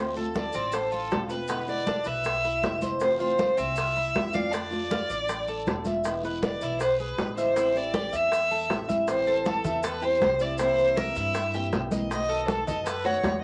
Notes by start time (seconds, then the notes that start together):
Already playing: D2 D3 C5
0.00 A3 C4 F4
0.15 A3 C4 F4 A4, high conga, maracas
0.34 D3 A3 C4 F4 D5, high bongo, high conga, short guiro, maracas
0.53 A1 C4, high conga, short guiro, maracas
0.72 A4 C5, muted nylon-string guitar stroke, high bongo, high conga, long guiro, maracas
0.91 F4 A4, high conga, maracas
1.10 E1 D3 A3 C4 F4, high bongo, low bongo, high conga, short guiro, maracas
1.29 A3 C4 F4 B4, short guiro, maracas
1.48 B2 D3 G#3 B3 E4, high bongo, high conga, long guiro, maracas
1.67 D3 G#3 B3 E4 D5, high bongo, high conga, maracas
1.86 D3 G#3 B3 D4 E4, high bongo, high conga, short guiro, maracas
2.04 B1 B4 E5, high bongo, high conga, short guiro, maracas
2.24 muted nylon-string guitar stroke, high bongo, high conga, long guiro, maracas
2.44 E4, high bongo, high conga, maracas
2.62 F1 D3 G#3 B3 E4, high bongo, low bongo, high conga, short guiro, maracas
2.81 D3 G#3 B3 E4 C5, high conga, short guiro, maracas
3.00 C3 E3 A3 C4 F4 C5, high bongo, high conga, long guiro, maracas
3.19 E3 A3 C4 F4 C5, high conga, maracas
3.38 A3, high bongo, high conga, short guiro, maracas
3.58 C2 C4 E5, high conga, short guiro, maracas
3.76 F4, muted nylon-string guitar stroke, high bongo, high conga, long guiro, maracas
3.95 E4, high conga, maracas
4.14 F2 E3 A3 C4 F4, high bongo, low bongo, high conga, short guiro, maracas
4.33 E3 A3 C4 F4 D5 F5, high conga, short guiro, maracas
4.52 D3 A3 D4 F4 D5, high bongo, high conga, long guiro, maracas
4.71 A3 D4 F4, high bongo, high conga, maracas
4.90 D3 A3 D4 F4, high bongo, high conga, short guiro, maracas
5.10 A1 D5, high bongo, high conga, short guiro, maracas
5.28 muted nylon-string guitar stroke, high bongo, high conga, long guiro, maracas
5.48 A4, high bongo, high conga, maracas
5.66 E1 D3 A3 D4 F4, high bongo, low bongo, high conga, short guiro, maracas
5.84 A3 D4 F4 E5, high conga, short guiro, maracas
6.04 B2 E3 G#3 B3 E4, high bongo, high conga, long guiro, maracas
6.23 E3 G#3 B3 E4 B4, high conga, maracas
6.42 E3 G#3 B3 E4 D5, high bongo, high conga, short guiro, maracas
6.61 B1 E4, high conga, short guiro, maracas
6.80 B4 C5, muted nylon-string guitar stroke, high bongo, high conga, long guiro, maracas
6.99 G#4 B4, high conga, maracas
7.17 A1 E3 G#3 B3 E4, high bongo, low bongo, high conga, short guiro, maracas
7.37 E3 G#3 B3 E4 C5 E5, short guiro, maracas
7.55 E3 G3 C4 E4, high bongo, high conga, long guiro, maracas
7.74 G3 C4 E4 D5, high bongo, high conga, maracas
7.94 E3 G3 C4 E4 G4, high bongo, high conga, short guiro, maracas
8.12 E2 E5, high bongo, high conga, short guiro, maracas
8.31 muted nylon-string guitar stroke, high bongo, high conga, long guiro, maracas
8.51 A4, high bongo, high conga, maracas
8.69 A1 E3 G3 C4 E4, high bongo, low bongo, high conga, short guiro, maracas
8.88 G3 C4 E4 E5, high conga, short guiro, maracas
9.07 E3 G3 C4 E4 C5, high bongo, high conga, long guiro, maracas
9.27 A4, high conga, maracas
9.45 A4, high bongo, high conga, short guiro, maracas
9.64 E2 E5, high conga, low conga, short guiro, maracas
9.82 A4 B4, muted nylon-string guitar stroke, high bongo, high conga, long guiro, maracas
10.01 G3 C4 E4 G4 C5, high conga, maracas
10.21 C2 E3, high bongo, low bongo, high conga, short guiro, maracas
10.39 G3 C4 E4 D5 E5, short guiro, maracas
10.58 C3 E3 A#3 C4 E4 C5, high bongo, high conga, long guiro, maracas
10.78 high bongo, high conga, maracas
10.97 A#4 E5, high bongo, high conga, short guiro, maracas
11.16 G2 E4, high bongo, high conga, short guiro, maracas
11.34 muted nylon-string guitar stroke, high bongo, high conga, long guiro, maracas
11.53 E3 A#3 C4 E4 G4, high bongo, high conga, maracas
11.72 B1 E3 A#3 C4 E4, high bongo, low bongo, high conga, short guiro, maracas
11.91 E3 A#3 C4 E4 D#5, high conga, short guiro, maracas
12.11 B2 D#3 A3 B3 F#4 D#5, high bongo, high conga, long guiro, maracas
12.29 A4, high conga, maracas
12.48 A4, high bongo, high conga, short guiro, maracas
12.67 F#2 D#5, high conga, low conga, short guiro, maracas
12.86 A4 B4, muted nylon-string guitar stroke, high bongo, high conga, long guiro, maracas
13.04 D#3 A3 B3 F#4 C#5, high conga, maracas
13.23 E2 D#3 A3 B3 F#4, high bongo, low bongo, high conga, short guiro, maracas